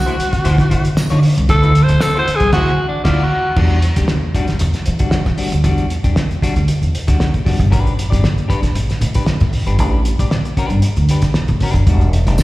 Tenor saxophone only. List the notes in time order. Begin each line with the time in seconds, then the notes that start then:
Already playing: F#4
1.49 A4
1.83 C5
2.01 A4
2.19 C5
2.36 G#4
2.52 F#4
2.88 D4
3.04 F4
3.23 F#4